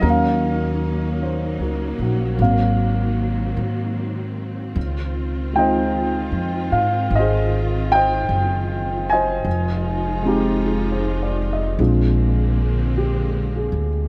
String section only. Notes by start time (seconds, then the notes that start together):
Already playing: C#4 D#4
0.03 F#3 A#3
2.37 D#3 C4
4.76 D#3 F4
9.46 F3 G#3 D#4 F4
11.79 D3 G#3 A#3 C4